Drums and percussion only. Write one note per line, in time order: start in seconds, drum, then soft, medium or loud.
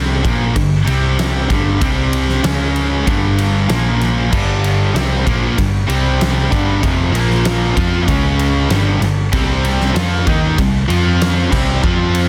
0.25 kick loud
0.25 ride medium
0.56 kick medium
0.56 ride medium
0.87 ride medium
1.19 snare loud
1.19 ride loud
1.50 kick loud
1.50 snare soft
1.50 ride medium
1.81 kick loud
1.81 ride loud
2.13 ride medium
2.29 snare soft
2.44 snare loud
2.44 ride loud
2.76 ride medium
3.07 kick loud
3.07 ride medium
3.38 ride medium
3.69 snare loud
3.69 ride medium
4.01 snare soft
4.01 ride medium
4.33 kick loud
4.33 crash loud
4.64 ride medium
4.96 snare loud
4.96 ride loud
5.27 kick loud
5.27 ride medium
5.58 kick medium
5.58 ride medium
5.89 ride medium
6.21 snare loud
6.21 ride medium
6.52 kick loud
6.52 snare soft
6.52 ride medium
6.83 kick loud
6.83 ride loud
7.15 ride medium
7.31 snare soft
7.45 snare loud
7.45 ride loud
7.77 kick loud
7.77 ride medium
8.08 kick loud
8.08 ride medium
8.39 ride medium
8.70 snare loud
8.70 ride medium
9.02 snare soft
9.02 ride medium
9.33 kick loud
9.33 ride medium
9.64 ride medium
9.81 snare soft
9.96 snare loud
9.96 ride loud
10.27 kick loud
10.27 ride medium
10.58 kick medium
10.58 ride medium
10.90 ride medium
11.21 snare loud
11.21 ride medium
11.52 kick loud
11.52 snare soft
11.52 crash medium
11.84 kick loud
12.15 ride medium